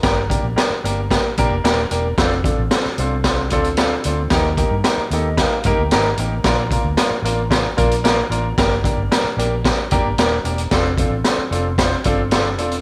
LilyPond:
<<
  \new Staff \with { instrumentName = "Grand piano" } { \time 4/4 \key g \minor \tempo 4 = 112 << { r1 | r1 | r4. ees''8 f''8 g''8 bes''4 | r1 |
r1 | r1 | } \\ { <bes d' g' bes'>8 <bes d' g' bes'>8 <bes d' g' bes'>8 <bes d' g' bes'>8 <bes d' g' bes'>8 <bes d' g' bes'>8 <bes d' g' bes'>8 <bes d' g' bes'>8 | <c' d' f' a'>8 <c' d' f' a'>8 <c' d' f' a'>8 <c' d' f' a'>8 <c' d' f' a'>8 <c' d' f' a'>8 <c' d' f' a'>8 <c' d' f' a'>8 | <bes ees' g' bes'>8 <bes ees' g' bes'>8 <bes ees' g' bes'>8 <bes ees' g' a'>8 <bes ees' g' bes'>8 <bes ees' g' bes'>8 <bes ees' g' bes'>8 <bes ees' g' bes'>8 | <bes d' f' bes'>8 <bes d' f' bes'>8 <bes d' f' bes'>8 <bes d' f' bes'>8 <bes d' f' bes'>8 <bes d' f' bes'>8 <bes d' f' bes'>8 <bes d' f' bes'>8 |
<bes d' g' bes'>8 <bes d' g' bes'>8 <bes d' g' bes'>8 <bes d' g' bes'>8 <bes d' g' bes'>8 <bes d' g' bes'>8 <bes d' g' bes'>8 <bes d' g' bes'>8 | <c' d' f' a'>8 <c' d' f' a'>8 <c' d' f' a'>8 <c' d' f' a'>8 <c' d' f' c''>8 <c' d' f' a'>8 <c' d' f' a'>8 <c' d' f' a'>8 | } >> }
  \new Staff \with { instrumentName = "Fingered electric bass" } { \clef bass \time 4/4 \key g \minor g,,8. bes,,16 r8 g,,8. r16 bes,,16 f,,16 ees,,8 e,,8 | f,,8. a,,16 r8 c,4 d,4 d,8 | ees,8. g,16 r8 ees,8. r16 g,16 d,16 aes,,8 a,,8 | bes,,8. d,16 r8 a,,4 bes,,4 a,,8 |
g,,8. g,,16 r8 bes,,8. r16 f,,16 g,,16 ees,,8 e,,8 | f,,8. a,,16 r8 f,,4 g,,4 e,,8 | }
  \new DrumStaff \with { instrumentName = "Drums" } \drummode { \time 4/4 <hh bd sn>8 <hh bd>8 <hh sn>8 hh8 <hh bd sn>8 <hh bd>8 <hh sn>8 hh8 | <hh bd sn>8 <hh bd>8 <hh sn>16 sn16 hh8 <hh bd sn>8 <hh bd>16 hh16 <hh sn>8 hh8 | <hh bd sn>8 <hh bd>8 <hh sn>8 hh8 <hh bd sn>8 <hh bd>8 <hh sn>8 hh8 | <hh bd sn>8 <hh bd>8 <hh sn>8 hh8 <hh bd sn>8 <hh bd>16 hh16 <hh sn>8 hh8 |
<hh bd sn>8 <hh bd>8 <hh sn>8 hh8 <hh bd sn>8 <hh bd>8 <hh sn>8 hh16 hh16 | <hh bd sn>8 <hh bd>8 <hh sn>8 hh8 <hh bd sn>8 <hh bd>8 <hh sn>8 hh16 hh16 | }
>>